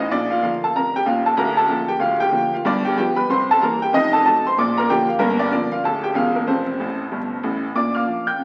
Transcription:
0.00 D#4 D#5
0.11 A#1 A#2 D4 D5
0.30 F4 F5
0.43 D3 F3 A#3 F4 F5
0.64 A4 A5
0.76 F1 F2 A#4 A#5
0.96 G4 G5
1.06 D#1 D#2 F4 F5
1.26 A4 A5
1.37 D1 D2 A#4 A#5
1.57 A4 A5
1.68 D3 F3 A#3
1.88 G4 G5
1.99 D1 D2 F4 F5
2.20 G4 G5
2.31 D3 F3 A#3
2.54 F4 F5
2.65 G1 G2 D4 D5
2.85 G4 G5
2.97 F3 G3 B3 G4 G5
3.16 B4 B5
3.29 C2 C3 C5 C6
3.51 A4 A5
3.62 E3 G3 A#3 A#4 A#5
3.82 G4 G5
3.93 F1 F2 D#4 D#5
4.13 A4 A5
4.25 C3 F#3 A3 A4 A5
4.47 C5 C6
4.58 A#1 A#2 D5 D6
4.78 A#4 A#5
4.89 D3 F3 A#3 G4 G5
5.08 F4 F5
5.19 G1 G2 A#3 A#4
5.39 D4 D5
5.51 D3 F3 A#3 D4 D5
5.72 F4 F5
5.84 D1 D2 A4 A5
6.04 G4 G5
6.14 E1 E2 F4 F5
6.35 A#3 A#4
6.47 F1 F2 C4 A4 C5
6.80 A1 A2
7.12 G1 G2
7.43 A1 A2
7.75 A#2 D4 D5 D6
7.95 F5 D6 F6
8.07 F3 D4
8.27 G5 G6
8.38 F2

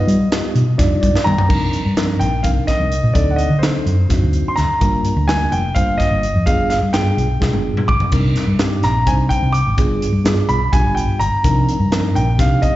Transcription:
Already playing: G3 B3 D#4 F4 B4 D#5
0.07 G3, closed hi-hat
0.31 G3 B3 D#4 F4 G4, snare, closed hi-hat
0.55 B2, closed hi-hat
0.78 F2 G3 D4 D#4 F4 D5, kick, snare, closed hi-hat
1.01 G2 D5, kick, closed hi-hat
1.14 muted fingered electric bass stroke, snare
1.24 G2 G5 A#5, mid tom
1.38 floor tom
1.48 C2 F3 C4 D4 D#4 A#4, kick, crash
1.73 closed hi-hat
1.85 G2
1.97 F3 C4 D4 D#4 A#4, snare, closed hi-hat
2.19 A#1 G5, closed hi-hat
2.43 C2 F3 C4 D4 D#4 A#4 F5, kick, closed hi-hat
2.67 D#5, kick, snare, closed hi-hat
2.80 C2
2.92 closed hi-hat
3.03 A#2
3.14 D2 F#3 C4 D4 D#4 A4 D5, kick, closed hi-hat
3.31 F#5
3.36 D#5, closed hi-hat
3.50 D3
3.59 F#3 C4 D4 C5
3.63 D#4 A4, snare, closed hi-hat
3.86 F#2, closed hi-hat
4.09 F#2 F#3 C4 D4 D#4 F#4, kick, snare, closed hi-hat
4.23 D2
4.33 closed hi-hat
4.47 C6, muted fingered electric bass stroke
4.56 D2 A#5, snare, closed hi-hat
4.81 G1 G3 A#3 D4 F4 A#4, kick, closed hi-hat
5.05 closed hi-hat
5.16 D2
5.28 G3 A#3 D4 F4 A#4 G#5, snare, closed hi-hat
5.52 F1 G5, closed hi-hat
5.75 G1 G3 A#3 D4 F4 C5 F5, kick, closed hi-hat
5.98 D#5, kick, snare, closed hi-hat
6.11 G1
6.23 closed hi-hat
6.36 F2
6.46 G1 G3 B3 D4 F4 G#4 F5, kick, closed hi-hat
6.70 F5, snare, closed hi-hat
6.82 G2
6.93 G3 B3 D4 F4 G#4 G5, snare, closed hi-hat
7.17 B1, closed hi-hat
7.40 B1 G3 B3 D4 F4 G#4, kick, snare
7.53 G1, high tom
7.77 muted fingered electric bass stroke, mid tom
7.88 G1 D6, kick
8.00 floor tom
8.12 C2 G3 C4 D4 D#4 A#4, kick, closed hi-hat, crash
8.36 snare, closed hi-hat
8.47 G2
8.59 G3 C4 D4 D#4 G4, snare, closed hi-hat
8.83 A#1 A#5, snare, closed hi-hat
9.06 C2 G3 C4 D4 D#4 C5 G#5, kick, closed hi-hat
9.29 G5, kick, closed hi-hat
9.42 C2
9.53 D6, closed hi-hat
9.66 G#1
9.77 G1 G3 B3 D4 F4 G#4, kick, closed hi-hat
10.02 closed hi-hat
10.13 G2
10.24 G3 B3 D4 F4 G#4, snare, closed hi-hat
10.49 B1 B5, closed hi-hat
10.73 B1 G3 B3 D4 F4 G4 G#5, kick, closed hi-hat
10.86 G1
10.95 G5, closed hi-hat
11.09 muted fingered electric bass stroke
11.20 G1 A#5, closed hi-hat
11.34 muted fingered electric bass stroke
11.44 C2 F3 C4 D4 D#4 A#4, kick, closed hi-hat
11.69 closed hi-hat
11.80 G2
11.91 F3 C4 D4 D#4 A#4, snare, closed hi-hat
12.15 A#1 G5, closed hi-hat
12.38 C2 F3 C4 D4 D#4 G4 F5, kick, snare, closed hi-hat
12.62 D#5, kick, closed hi-hat

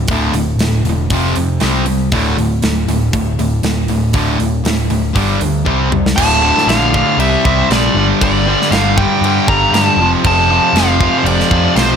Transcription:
0.08 D1 D2 A2 D3, kick, open hi-hat
0.33 D1 D2 A2, open hi-hat
0.57 D1 D2 A2, snare, open hi-hat
0.83 E1 D2 A2, open hi-hat
0.90 D2
1.10 F1 F2 C3 F3, kick, open hi-hat
1.36 F2 C3, open hi-hat
1.60 C2 C3 G3 C4, snare, open hi-hat
1.86 C3 G3, open hi-hat
2.12 D1 D2 A2 D3, kick, open hi-hat
2.38 D1 D2 A2, open hi-hat
2.62 D1 D2 A2, snare, open hi-hat
2.87 D1 D2 A2, open hi-hat
3.12 D1 D2 A2, kick, open hi-hat
3.38 D1 D2 A2, open hi-hat
3.62 D1 D2 A2, snare, open hi-hat
3.88 D1 D2 A2, open hi-hat
4.13 D1 D2 A2 D3, kick, open hi-hat
4.39 D1 D2 A2, open hi-hat
4.64 D1 D2 A2, snare, open hi-hat
4.90 D1 D2 A2, open hi-hat
5.13 G1 G2 D3 G3, kick, open hi-hat
5.39 D2 G2 D3, open hi-hat
5.65 C2 C3 G3 C4, kick
5.91 C3 G3, mid tom
6.06 snare
6.16 D1 D2 A2 D3 A5, kick, crash
6.42 D2 A2 D3
6.58 snare
6.67 A#1 D2 A2 D3 F5, snare, crash
6.93 D2 A2 D3, kick
7.17 C2 C3 G3 C4 E5, crash
7.45 C2 C3 G3 C4, kick
7.68 A#1 C3 G3 C4 D5, snare, crash
7.94 G1 G2 D3 G3
8.21 G1 G2 D3 G3 D5, kick, crash
8.46 G2 D3 G3
8.62 snare
8.71 G1 G2 D3 G3 F5, snare, crash
8.97 G2 D3 G3 G5, kick
9.01 G2
9.21 G2 D3 G3, crash
9.47 G1 G2 D3 G3 A#5, kick
9.71 G2 D3 G3 A5, snare, crash
9.97 F1 F2 C3 F3
10.24 F1 F2 C3 F3 A5, kick, crash
10.49 F2 C3 F3
10.73 F1 F2 C3 F3 F5, snare, crash
10.99 F2 C3 F3, kick
11.18 C5
11.23 F1 F2 C3 F3 D5, crash
11.40 snare
11.49 F2 C3 F3, kick
11.75 B1 F2 C3 F3 C5, snare, crash

